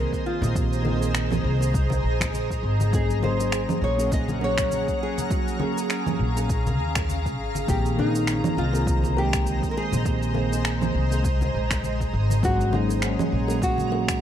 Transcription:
Already playing: D#3 A#3 C4 G#4 A#4 C5 D#5 A#5
0.13 kick, shaker
0.26 F4
0.42 A#1, high conga, low conga, shaker
0.55 D#3 A#3 C4 G4, kick, shaker
0.73 shaker
0.82 D#3 A#3 C4, high bongo, high conga
0.88 G#4
1.01 high bongo, shaker
1.15 finger snap, shaker
1.30 high conga, low conga, shaker
1.44 C2
1.60 D#3 A#3 C4 G#4, high bongo, shaker
1.74 kick, shaker
1.90 high conga, low conga, shaker
2.04 A#1
2.21 finger snap, kick, low conga, shaker
2.33 high conga, shaker
2.51 kick, shaker
2.63 G#1
2.80 high conga, shaker
2.91 F#3 A#3 C#4 G#4 F#5, kick, shaker
3.10 shaker
3.19 F#3 A#3 C#4, high bongo, high conga
3.24 G#4 C5
3.40 high bongo, shaker
3.52 finger snap, shaker
3.69 high conga, low conga, shaker
3.82 A#1 C#5
3.97 F#3 A#3 C#4 G#4, high bongo, shaker
4.12 D#5, kick, shaker
4.28 high conga, shaker
4.39 F#3 A#3 C#4, high bongo
4.44 G#4 C#5
4.58 finger snap, kick, shaker
4.71 high conga, shaker
4.88 kick, shaker
5.03 G#4
5.18 high conga, low conga, shaker
5.29 F#3 A#3 C#4 F#4 F5, kick, shaker
5.48 shaker
5.57 F#3 A#3 C#4, high bongo, high conga
5.63 G#4
5.77 high bongo, shaker
5.90 finger snap, shaker
6.06 high conga, low conga, shaker
6.19 A#1
6.35 F#3 A#3 C#4 G#4, high bongo, shaker
6.49 kick, shaker
6.67 high conga, low conga, shaker
6.79 D#2
6.95 finger snap, kick, low conga, shaker
7.09 high conga, shaker
7.26 kick, shaker
7.38 G#1
7.55 high conga, shaker
7.67 A#1 D#3 G#3 A#3 C4 G4 G#4 C5 D#5, kick, shaker
7.86 shaker
7.95 D#3 A#3 C4, high bongo
7.99 D#4 G#4, high conga
8.15 high bongo, shaker
8.27 finger snap, shaker
8.44 high conga, low conga, shaker
8.57 C2 F4
8.72 D#3 A#3 C4 G#4, high bongo, shaker
8.87 kick, shaker
9.04 high conga, shaker
9.14 D#3 A#3 C4, high bongo
9.18 G#3 G4
9.33 finger snap, kick, shaker
9.46 high conga, shaker
9.63 kick, shaker
9.71 A#4
9.77 G#4
9.92 A#1, high conga, low conga, shaker
10.04 D#3 A#3 C4 G4, kick, shaker
10.23 shaker
10.32 D#3 A#3 C4, high bongo, high conga
10.38 G#4
10.52 high bongo, shaker
10.65 finger snap, shaker
10.81 high conga, low conga, shaker
10.95 C2
11.10 D#3 A#3 C4 G#4, high bongo, shaker
11.24 kick, shaker
11.41 high conga, low conga, shaker
11.54 A#1
11.70 finger snap, kick, low conga, shaker
11.83 high conga, shaker
12.01 kick, shaker
12.13 G#1
12.30 high conga, shaker
12.42 F#3 A#3 C#4 F#4 G#4 C#5 F#5 A#5, kick, shaker
12.61 shaker
12.70 F#3 A#3 C#4, high bongo, high conga
12.74 D#4 G#4
12.89 high bongo, shaker
13.02 C#4, finger snap, shaker
13.19 high conga, low conga, shaker
13.32 A#1
13.47 F#3 A#3 C#4 G#4, high bongo, shaker
13.62 F#4, kick, shaker
13.78 high conga, shaker
13.89 F#3 A#3 C#4, high bongo
13.94 G#4
14.08 finger snap, kick, shaker

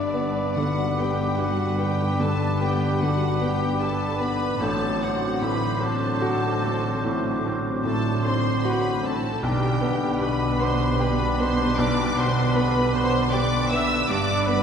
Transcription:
Already playing: G1 G2 D3 G3 B3 D4 B4 D5 D6
0.14 B3
0.56 D3 F#4 F#5
0.97 B3 G4 G5
1.38 F#4 G4 F#5
1.79 B3 G4 G5
2.19 D3 A4 A5
2.60 B3 G4 G5
3.00 D3 F#4 F#5
3.40 B3 G4 G5
3.80 G4 A4 A5
4.20 B3 B4 B5
4.59 A1 A2 D3 F#3 C4 D4 A4 C5 A5 D6
5.00 C4 F#4 F#5
5.41 A2 B4 B5
5.81 C4 A4 A5
6.22 F#4
6.64 C4
7.05 A2
7.46 C4
7.84 A2 A4 A5
8.24 C4 C5 C6
8.63 F#4 B4 B5
9.03 C4 A4 A5
9.42 B1 B2 D3 G3 B3 D4 G4 B4 G5 D6
9.81 B3
10.20 B2 B4 B5
10.60 B3 C5 C6
10.99 G4 B4 B5
11.39 B3 C5 C6
11.78 B1 D5 D6
12.16 B2 C5 C6
12.55 B3 B4 B5
12.93 B2 C5 C6
13.31 G4 D5 D6
13.69 B3 E5 E6
14.07 G1 G2 D3 G3 B3 D4 B4 D5 D6
14.46 B3 B4 B5

